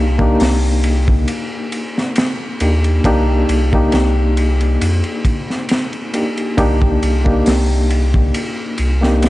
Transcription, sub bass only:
0, 0, Header, 1, 2, 480
1, 0, Start_track
1, 0, Key_signature, -3, "minor"
1, 0, Tempo, 882353
1, 1659, Time_signature, 4, 2, 24, 8
1, 5054, End_track
2, 0, Start_track
2, 0, Title_t, "Sub bass"
2, 0, Program_c, 0, 38
2, 0, Note_on_c, 0, 36, 81
2, 194, Note_off_c, 0, 36, 0
2, 220, Note_on_c, 0, 36, 87
2, 678, Note_off_c, 0, 36, 0
2, 1418, Note_on_c, 0, 39, 84
2, 1632, Note_off_c, 0, 39, 0
2, 1658, Note_on_c, 0, 36, 91
2, 1872, Note_off_c, 0, 36, 0
2, 1897, Note_on_c, 0, 36, 85
2, 2112, Note_off_c, 0, 36, 0
2, 2138, Note_on_c, 0, 36, 90
2, 2597, Note_off_c, 0, 36, 0
2, 2619, Note_on_c, 0, 41, 95
2, 2733, Note_off_c, 0, 41, 0
2, 3581, Note_on_c, 0, 36, 91
2, 3794, Note_off_c, 0, 36, 0
2, 3822, Note_on_c, 0, 36, 80
2, 4034, Note_off_c, 0, 36, 0
2, 4062, Note_on_c, 0, 36, 96
2, 4520, Note_off_c, 0, 36, 0
2, 4781, Note_on_c, 0, 36, 87
2, 5054, Note_off_c, 0, 36, 0
2, 5054, End_track
0, 0, End_of_file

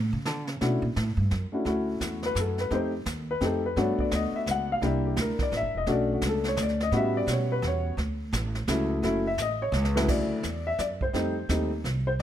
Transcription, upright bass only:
0, 0, Header, 1, 3, 480
1, 0, Start_track
1, 0, Key_signature, 2, "major"
1, 0, Tempo, 351288
1, 827, Time_signature, 3, 2, 24, 8
1, 16697, End_track
2, 0, Start_track
2, 0, Title_t, "Upright bass"
2, 0, Program_c, 0, 32
2, 0, Note_on_c, 0, 45, 81
2, 165, Note_off_c, 0, 45, 0
2, 174, Note_on_c, 0, 49, 88
2, 358, Note_off_c, 0, 49, 0
2, 358, Note_on_c, 0, 50, 101
2, 645, Note_off_c, 0, 50, 0
2, 645, Note_on_c, 0, 49, 93
2, 819, Note_off_c, 0, 49, 0
2, 834, Note_on_c, 0, 47, 78
2, 1114, Note_off_c, 0, 47, 0
2, 1122, Note_on_c, 0, 46, 91
2, 1298, Note_off_c, 0, 46, 0
2, 1316, Note_on_c, 0, 45, 90
2, 1589, Note_off_c, 0, 45, 0
2, 1597, Note_on_c, 0, 43, 85
2, 1775, Note_off_c, 0, 43, 0
2, 1796, Note_on_c, 0, 42, 85
2, 1975, Note_off_c, 0, 42, 0
2, 2253, Note_on_c, 0, 38, 81
2, 2726, Note_off_c, 0, 38, 0
2, 2738, Note_on_c, 0, 40, 84
2, 3204, Note_off_c, 0, 40, 0
2, 3213, Note_on_c, 0, 42, 88
2, 3685, Note_off_c, 0, 42, 0
2, 3697, Note_on_c, 0, 41, 85
2, 4168, Note_off_c, 0, 41, 0
2, 4175, Note_on_c, 0, 39, 88
2, 4647, Note_off_c, 0, 39, 0
2, 4656, Note_on_c, 0, 41, 87
2, 5127, Note_off_c, 0, 41, 0
2, 5141, Note_on_c, 0, 43, 86
2, 5425, Note_off_c, 0, 43, 0
2, 5623, Note_on_c, 0, 38, 91
2, 5899, Note_off_c, 0, 38, 0
2, 6099, Note_on_c, 0, 37, 86
2, 6568, Note_off_c, 0, 37, 0
2, 6579, Note_on_c, 0, 36, 79
2, 7047, Note_off_c, 0, 36, 0
2, 7056, Note_on_c, 0, 38, 93
2, 7342, Note_off_c, 0, 38, 0
2, 7538, Note_on_c, 0, 33, 89
2, 7680, Note_on_c, 0, 31, 61
2, 7700, Note_off_c, 0, 33, 0
2, 7845, Note_off_c, 0, 31, 0
2, 7853, Note_on_c, 0, 28, 57
2, 8007, Note_off_c, 0, 28, 0
2, 8013, Note_on_c, 0, 35, 79
2, 8484, Note_off_c, 0, 35, 0
2, 8493, Note_on_c, 0, 37, 93
2, 8963, Note_off_c, 0, 37, 0
2, 8973, Note_on_c, 0, 38, 90
2, 9443, Note_off_c, 0, 38, 0
2, 9450, Note_on_c, 0, 45, 89
2, 9921, Note_off_c, 0, 45, 0
2, 9931, Note_on_c, 0, 47, 92
2, 10401, Note_off_c, 0, 47, 0
2, 10415, Note_on_c, 0, 40, 96
2, 10883, Note_off_c, 0, 40, 0
2, 10892, Note_on_c, 0, 38, 87
2, 11361, Note_off_c, 0, 38, 0
2, 11376, Note_on_c, 0, 33, 102
2, 11843, Note_off_c, 0, 33, 0
2, 11854, Note_on_c, 0, 37, 101
2, 12322, Note_off_c, 0, 37, 0
2, 12331, Note_on_c, 0, 30, 87
2, 12800, Note_off_c, 0, 30, 0
2, 12816, Note_on_c, 0, 33, 92
2, 13273, Note_off_c, 0, 33, 0
2, 13281, Note_on_c, 0, 37, 106
2, 13755, Note_off_c, 0, 37, 0
2, 13773, Note_on_c, 0, 38, 70
2, 14241, Note_off_c, 0, 38, 0
2, 14254, Note_on_c, 0, 40, 82
2, 14722, Note_off_c, 0, 40, 0
2, 14735, Note_on_c, 0, 42, 88
2, 15203, Note_off_c, 0, 42, 0
2, 15213, Note_on_c, 0, 41, 75
2, 15683, Note_off_c, 0, 41, 0
2, 15699, Note_on_c, 0, 39, 88
2, 16166, Note_off_c, 0, 39, 0
2, 16179, Note_on_c, 0, 36, 89
2, 16647, Note_off_c, 0, 36, 0
2, 16697, End_track
3, 0, Start_track
3, 0, Title_t, "Muted upright bass strokes"
3, 5446, Note_on_c, 9, 29, 41
3, 5583, Note_off_c, 9, 29, 0
3, 5907, Note_on_c, 9, 29, 41
3, 6044, Note_off_c, 9, 29, 0
3, 7359, Note_on_c, 9, 29, 40
3, 7496, Note_off_c, 9, 29, 0
3, 16697, End_track
0, 0, End_of_file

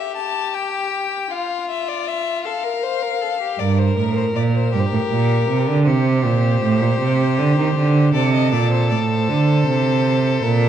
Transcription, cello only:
0, 0, Header, 1, 2, 480
1, 0, Start_track
1, 0, Tempo, 760456
1, 2264, Time_signature, 12, 3, 24, 8
1, 6747, End_track
2, 0, Start_track
2, 0, Title_t, "Cello"
2, 0, Program_c, 0, 42
2, 2264, Note_on_c, 0, 43, 72
2, 2487, Note_off_c, 0, 43, 0
2, 2508, Note_on_c, 0, 45, 77
2, 2742, Note_off_c, 0, 45, 0
2, 2748, Note_on_c, 0, 46, 72
2, 2982, Note_off_c, 0, 46, 0
2, 2993, Note_on_c, 0, 43, 77
2, 3039, Note_off_c, 0, 43, 0
2, 3108, Note_on_c, 0, 45, 73
2, 3155, Note_off_c, 0, 45, 0
2, 3229, Note_on_c, 0, 46, 69
2, 3461, Note_off_c, 0, 46, 0
2, 3465, Note_on_c, 0, 48, 75
2, 3582, Note_on_c, 0, 50, 80
2, 3592, Note_off_c, 0, 48, 0
2, 3705, Note_on_c, 0, 48, 87
2, 3715, Note_off_c, 0, 50, 0
2, 3945, Note_on_c, 0, 46, 77
2, 3954, Note_off_c, 0, 48, 0
2, 4177, Note_off_c, 0, 46, 0
2, 4181, Note_on_c, 0, 45, 82
2, 4298, Note_on_c, 0, 46, 80
2, 4308, Note_off_c, 0, 45, 0
2, 4415, Note_off_c, 0, 46, 0
2, 4419, Note_on_c, 0, 48, 78
2, 4661, Note_on_c, 0, 50, 83
2, 4671, Note_off_c, 0, 48, 0
2, 4777, Note_off_c, 0, 50, 0
2, 4781, Note_on_c, 0, 51, 72
2, 4895, Note_off_c, 0, 51, 0
2, 4899, Note_on_c, 0, 50, 72
2, 5136, Note_off_c, 0, 50, 0
2, 5140, Note_on_c, 0, 48, 82
2, 5382, Note_on_c, 0, 46, 76
2, 5392, Note_off_c, 0, 48, 0
2, 5624, Note_on_c, 0, 45, 76
2, 5633, Note_off_c, 0, 46, 0
2, 5861, Note_on_c, 0, 50, 80
2, 5871, Note_off_c, 0, 45, 0
2, 6098, Note_off_c, 0, 50, 0
2, 6101, Note_on_c, 0, 48, 79
2, 6575, Note_off_c, 0, 48, 0
2, 6586, Note_on_c, 0, 46, 85
2, 6747, Note_off_c, 0, 46, 0
2, 6747, End_track
0, 0, End_of_file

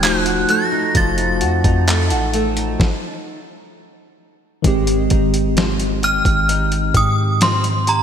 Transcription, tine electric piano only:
0, 0, Header, 1, 2, 480
1, 0, Start_track
1, 0, Tempo, 923077
1, 495, Time_signature, 4, 2, 24, 8
1, 4175, End_track
2, 0, Start_track
2, 0, Title_t, "Tine electric piano"
2, 0, Program_c, 0, 4
2, 0, Control_c, 0, 64, 127
2, 4, Note_on_c, 0, 53, 62
2, 13, Note_on_c, 0, 57, 57
2, 21, Control_c, 0, 64, 0
2, 21, Note_on_c, 0, 63, 60
2, 30, Note_on_c, 0, 66, 70
2, 117, Control_c, 0, 64, 127
2, 1429, Note_off_c, 0, 53, 0
2, 1433, Note_off_c, 0, 57, 0
2, 1437, Note_off_c, 0, 63, 0
2, 1441, Note_off_c, 0, 66, 0
2, 1462, Control_c, 0, 64, 0
2, 2404, Note_on_c, 0, 51, 83
2, 2413, Note_on_c, 0, 56, 75
2, 2421, Note_on_c, 0, 60, 71
2, 2430, Note_on_c, 0, 67, 88
2, 2526, Control_c, 0, 64, 127
2, 4175, Note_off_c, 0, 51, 0
2, 4175, Note_off_c, 0, 56, 0
2, 4175, Note_off_c, 0, 60, 0
2, 4175, Note_off_c, 0, 67, 0
2, 4175, End_track
0, 0, End_of_file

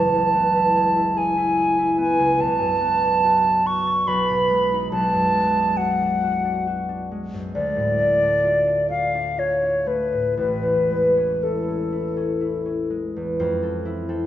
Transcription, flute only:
0, 0, Header, 1, 2, 480
1, 0, Start_track
1, 0, Key_signature, 3, "major"
1, 0, Tempo, 834492
1, 1386, Time_signature, 3, 2, 24, 8
1, 2833, Tempo, 869565
1, 4273, Tempo, 921659
1, 5233, Tempo, 1013514
1, 6673, Tempo, 980392
1, 7153, Tempo, 924499
1, 7603, End_track
2, 0, Start_track
2, 0, Title_t, "Flute"
2, 0, Program_c, 0, 73
2, 0, Note_on_c, 0, 81, 69
2, 675, Note_on_c, 0, 80, 61
2, 684, Note_off_c, 0, 81, 0
2, 1150, Note_off_c, 0, 80, 0
2, 1153, Note_on_c, 0, 80, 65
2, 1385, Note_on_c, 0, 81, 74
2, 1394, Note_off_c, 0, 80, 0
2, 2109, Note_on_c, 0, 85, 67
2, 2117, Note_off_c, 0, 81, 0
2, 2344, Note_on_c, 0, 83, 56
2, 2353, Note_off_c, 0, 85, 0
2, 2826, Note_off_c, 0, 83, 0
2, 2830, Note_on_c, 0, 81, 72
2, 3299, Note_on_c, 0, 78, 63
2, 3308, Note_off_c, 0, 81, 0
2, 4032, Note_off_c, 0, 78, 0
2, 4280, Note_on_c, 0, 74, 67
2, 4969, Note_off_c, 0, 74, 0
2, 4985, Note_on_c, 0, 77, 57
2, 5239, Note_on_c, 0, 73, 49
2, 5247, Note_off_c, 0, 77, 0
2, 5468, Note_on_c, 0, 71, 44
2, 5475, Note_off_c, 0, 73, 0
2, 5706, Note_off_c, 0, 71, 0
2, 5709, Note_on_c, 0, 71, 51
2, 6206, Note_on_c, 0, 69, 40
2, 6213, Note_off_c, 0, 71, 0
2, 6919, Note_off_c, 0, 69, 0
2, 7603, End_track
0, 0, End_of_file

